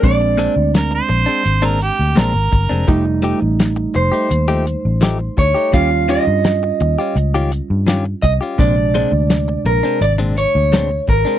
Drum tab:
HH |xxxxxxxx|xxxxxxxx|xxxxxxxx|xxxxxxxx|
SD |--o---o-|--o---o-|--o---o-|--o---o-|
BD |o------o|o------o|o------o|o------o|